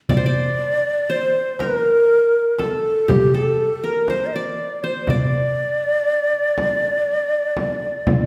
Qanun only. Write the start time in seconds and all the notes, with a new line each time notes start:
0.09 D5
0.17 C5
0.26 D5
1.10 C5
1.60 A#4
2.59 A4
3.08 G4
3.34 A4
3.84 A#4
4.10 C5
4.36 D5
4.84 C5
5.10 D5